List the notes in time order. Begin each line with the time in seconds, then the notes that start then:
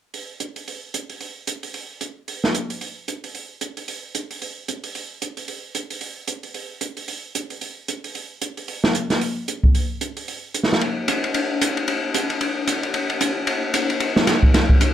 0.14 open hi-hat
0.40 closed hi-hat
0.56 open hi-hat
0.68 open hi-hat
0.94 closed hi-hat
1.10 open hi-hat
1.21 open hi-hat
1.47 closed hi-hat
1.63 open hi-hat
1.74 open hi-hat
2.01 closed hi-hat
2.28 open hi-hat
2.44 snare
2.55 closed hi-hat
2.70 open hi-hat
2.81 open hi-hat
3.08 closed hi-hat
3.24 open hi-hat
3.35 open hi-hat
3.61 closed hi-hat
3.77 open hi-hat
3.88 open hi-hat
4.15 closed hi-hat
4.31 open hi-hat
4.42 open hi-hat
4.68 closed hi-hat
4.84 open hi-hat
4.95 open hi-hat
5.22 closed hi-hat
5.37 open hi-hat
5.48 open hi-hat
5.75 closed hi-hat
5.90 open hi-hat
6.01 open hi-hat
6.28 closed hi-hat
6.43 open hi-hat
6.54 open hi-hat
6.81 closed hi-hat
6.97 open hi-hat
7.08 open hi-hat
7.35 closed hi-hat
7.50 open hi-hat
7.61 open hi-hat
7.88 closed hi-hat
8.04 open hi-hat
8.15 open hi-hat
8.42 closed hi-hat
8.57 open hi-hat
8.68 open hi-hat
8.84 snare
8.95 closed hi-hat
9.10 snare, open hi-hat
9.21 open hi-hat
9.48 closed hi-hat
9.64 kick
9.75 open hi-hat
10.01 closed hi-hat
10.17 open hi-hat
10.28 open hi-hat
10.54 closed hi-hat
10.63 snare
10.73 snare
10.81 ride
11.08 hi-hat pedal, ride
11.24 ride
11.34 ride
11.61 hi-hat pedal, ride
11.77 ride
11.88 ride
12.14 hi-hat pedal, ride
12.30 ride
12.41 ride
12.67 hi-hat pedal, ride
12.83 ride
12.94 ride
13.10 ride
13.21 hi-hat pedal, ride
13.47 ride
13.74 hi-hat pedal, ride
13.90 ride
14.00 ride
14.16 snare
14.27 snare, hi-hat pedal, ride
14.43 kick
14.54 snare, ride
14.69 kick
14.81 hi-hat pedal, ride